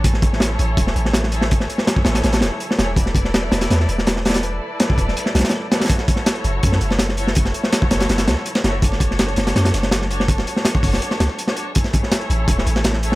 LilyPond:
<<
  \new Staff \with { instrumentName = "String section" } { \time 4/4 \key a \major \tempo 4 = 164 <e' gis' a' cis''>2.~ <e' gis' a' cis''>8 <e' gis' a' cis''>8 | <e' gis' a' cis''>2.~ <e' gis' a' cis''>8 <e' gis' a' cis''>8 | <e' a' b' d''>2.~ <e' a' b' d''>8 <e' a' b' d''>8 | <e' a' b' d''>2.~ <e' a' b' d''>8 <e' a' b' d''>8 |
<e' fis' a' cis''>2.~ <e' fis' a' cis''>8 <e' fis' a' cis''>8 | <e' fis' a' cis''>2.~ <e' fis' a' cis''>8 <e' fis' a' cis''>8 | <d' fis' a' cis''>2.~ <d' fis' a' cis''>8 <d' fis' a' cis''>8 | <d' fis' a' cis''>2.~ <d' fis' a' cis''>16 <d' fis' a' cis''>8. |
<e' gis' a' cis''>2.~ <e' gis' a' cis''>8 <e' gis' a' cis''>8 | }
  \new Staff \with { instrumentName = "808-style bass" } { \clef bass \time 4/4 \key a \major a,,4. a,,8 e,,8 a,,4.~ | a,,8 r4 a,,8 a,,8 e,,8 r8 e,,8~ | e,,4. e,,8 e,8 e,,4.~ | e,,8 r4 e,,8 r8 b,,8 r4 |
r4. fis,,8 fis,8 fis,,4.~ | fis,,8 r4 fis,,8 fis,,8 cis,8 r8 fis,,8~ | fis,,4. fis,,8 fis,8 fis,,4.~ | fis,,8 r4 fis,,8 r8 cis,8 r4 |
r4. a,,8 e,,8 a,,4. | }
  \new DrumStaff \with { instrumentName = "Drums" } \drummode { \time 4/4 <hh bd>16 sn16 <hh bd>16 sn16 <hh sn>8 hh8 <hh bd>16 sn16 hh16 sn16 <hh sn>16 sn16 hh16 sn16 | <hh bd>16 sn16 hh16 sn16 <hh sn>16 bd16 <hh sn>16 <hh sn>16 <hh sn>16 <hh sn>16 <hh sn>8 hh16 sn16 <hh sn>8 | <hh bd>16 sn16 <hh bd>16 sn16 <hh sn>8 <hh sn>16 <hh sn>16 <hh sn>16 sn16 hh16 sn16 <hh sn>16 sn16 <hh sn>32 <hh sn>32 <hh sn>16 | hh4 <hh sn>16 bd16 <hh bd>16 sn16 hh16 sn16 <hh sn>32 <hh sn>32 <hh sn>32 <hh sn>32 r8 <hh sn>16 <hh sn>32 <hh sn>32 |
<hh bd>16 sn16 <hh bd>16 sn16 <hh sn>16 hh16 hh8 <hh bd>16 sn16 hh16 sn16 <hh sn>16 sn16 hh16 sn16 | <hh bd>16 sn16 hh16 sn16 <hh sn>16 bd16 <hh sn>16 <hh sn>16 <hh sn>16 <hh sn>16 <hh sn>16 sn16 hh16 sn16 <hh sn>8 | <hh bd>16 sn16 <hh bd>16 sn16 <hh sn>16 hh16 <hh sn>16 <hh sn>16 <hh sn>16 <hh sn>16 <hh sn>16 <hh sn>16 <hh sn>16 sn16 hh16 sn16 | <hh bd>16 sn16 hh16 sn16 <hh sn>16 bd16 <hh hho bd>16 sn16 hh16 sn16 <hh sn>16 sn16 hh16 sn16 hh8 |
<hh bd>16 sn16 <hh bd>16 sn16 <hh sn>16 hh16 hh8 <hh bd>16 sn16 hh16 sn16 <hh sn>16 sn16 hh16 sn16 | }
>>